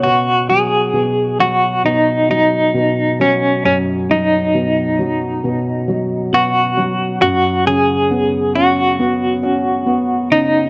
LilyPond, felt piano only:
\new Staff \with { instrumentName = "Felt piano" } { \clef bass \time 4/4 \key b \major \tempo 4 = 67 b,8 fis8 b,8 fis8 b,8 fis8 b,8 fis8 | fis,8 fis8 b,8 fis8 b,8 fis8 b,8 fis8 | fis,8 cis8 b8 cis'8 b8 cis'8 b8 cis8 | }